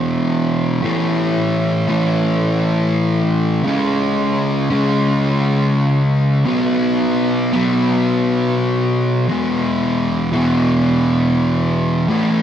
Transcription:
Already playing: E2 B2 E3
0.82 A2 E3 A3
1.88 A2 E3 A3
3.64 C#3 G#3 C#4
4.70 C#3 G#3 C#4
6.45 B2 F#3 B3
7.53 B2 F#3 B3
9.28 E2 B2 E3
10.32 E2 B2 E3
12.08 A2 E3 A3

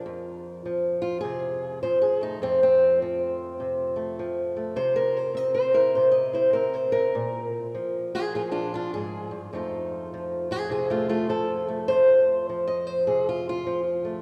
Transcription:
Already playing: F3
0.06 F2
0.66 F3
1.02 F4
1.21 C3 G#4
1.83 F3 C5
2.02 G#4
2.21 A3 D#4
2.42 F2 C4
2.63 C4
3.02 F3
3.60 C3
3.96 A3
4.19 F3
4.57 A3
4.76 C3 C5
4.96 A#4
5.17 C5
5.35 C4 D#5
5.55 C5
5.74 E4 A#4
5.95 C3 C5
6.12 D#5
6.33 E4 C5
6.53 C4 A#4
6.73 C5
6.92 E4 A#4
7.15 A#2
7.75 F3
8.15 F4 G#4
8.35 F3 F4 G#4
8.51 D4 F4
8.74 D4 F4
8.94 G#2 G#4
9.31 G2
9.53 F2 F3 A3 D#4 F4
10.14 F3
10.51 F4 G#4
10.70 C3 F4 G#4
10.90 A3 F4
11.09 A3 F4
11.29 F3 A4
11.68 A3
11.88 F2 C5
12.50 F3
12.68 D#5
12.87 C5
13.07 C3 G#4
13.29 F4
13.49 F4
13.67 F3
14.05 A3

